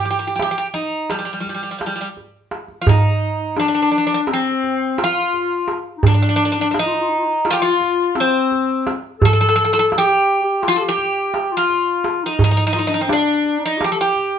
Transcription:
0.05 G4, darbuka ka
0.10 G4
0.19 G4
0.27 G4
0.36 G4, darbuka tek
0.42 G4
0.51 G4
0.58 G4
0.74 D#4, darbuka ka
1.10 G3, darbuka tek
1.19 G3
1.25 G3
1.33 G3
1.40 G3
1.46 G3, darbuka ka
1.54 G3
1.63 G3
1.71 G3
1.78 G3, darbuka tek
1.86 G3
1.96 G3
2.01 G3
2.17 darbuka ka
2.51 darbuka tek
2.68 darbuka ka
2.81 F4
2.86 D#4, darbuka dum
3.56 D4, darbuka tek
3.68 D4
3.74 D4
3.82 D4
3.91 D4
3.98 D4
4.07 D4
4.14 D4
4.27 C4, darbuka tek
4.33 C4
4.63 darbuka ka
4.98 F4, darbuka tek
5.04 F4
5.34 darbuka ka
5.68 darbuka tek
5.98 D#4
6.03 D4, darbuka dum
6.14 D4
6.22 D4
6.29 D4
6.36 D4
6.45 D4
6.52 D4
6.60 D4
6.71 D4, darbuka tek
6.77 D#4
6.86 F4
6.93 D#4
7.01 F4
7.09 D#4
7.18 F4
7.24 D#4
7.45 F4, darbuka tek
7.50 F4 G4
7.58 F4
7.81 darbuka ka
8.15 C4, darbuka tek
8.20 C4
8.51 darbuka ka
8.87 darbuka tek
9.19 A4, darbuka dum
9.25 A4
9.33 A4
9.41 A4
9.49 A4
9.56 A4
9.65 A4
9.73 A4
9.79 A4
9.92 G#4, darbuka tek
9.98 G4
10.06 G4
10.43 G4
10.62 F4, darbuka tek
10.68 F4
10.76 A4
10.81 G4
10.89 G4
10.98 darbuka ka
11.34 darbuka tek
11.52 F4
11.57 F4
11.70 darbuka ka
12.04 darbuka tek
12.23 D#4
12.39 D#4, darbuka dum
12.44 D#4
12.51 D#4
12.57 D#4
12.67 D#4
12.73 D#4 F4, darbuka ka
12.79 D#4
12.87 D4 D#4
12.94 D#4
12.98 C4 D#4
13.07 D4, darbuka tek
13.13 D4
13.45 darbuka ka
13.59 D#4
13.66 D#4
13.78 G4, darbuka tek
13.84 G4
13.92 G4 A4
14.01 G4
14.16 darbuka ka

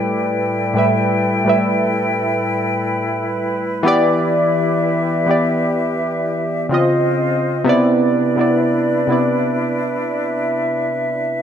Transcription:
Already playing: A2 G3 E4 A4 B4 D5 G5
0.74 A2 G3 B4
0.78 E5
1.45 A2 G3 B4
1.49 E5
3.83 E3 B3 G4 E5
3.88 D5
5.26 E3 B3 G4
5.31 D5
6.69 C#3 C4 F4 C5 D#5
6.74 D#5
7.64 C3 B3 D4 E4 B4 D5
7.69 D5
8.36 C3 B3 E4
8.41 D5
9.07 C3 B3 E4
9.12 D5
9.56 E5

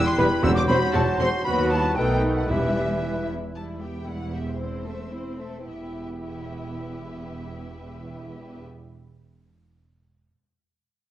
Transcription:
Already playing: E2 G3 E4 B4
0.06 C6
0.18 E1 E2 G3 B3 E4 G4 B4 B5
0.43 E1 E2 F#3 C4 F#4 C5 E6
0.54 D6
0.67 E1 E2 F#3 C4 F#4 C5 B5
0.93 E1 E2 C4 F#4 A5
1.18 E1 E2 F#3 C4 F#4 C5 C6
1.44 D#2 F#3 B3 F#4 B4 B5
1.70 G3 E4 A5
1.95 B1 B2 D#3 A3 D#4 A4 B4 G5
2.36 F#5
2.49 E1 E2 E3 G3 E4 G4 B4 E5
3.55 E1 E2 G3 E4 B4 A5
3.80 B3 G4 E5 G5
4.07 G3 E4 B4 F#5
4.33 B3 G4 E5
4.47 C5
4.59 C4 E4 C5
4.85 A3 C4 A4 E5
5.11 C4 E4 C5
5.39 A3 C4 A4 E5
5.66 E1 E2 B3 E4 G4 B4 E5

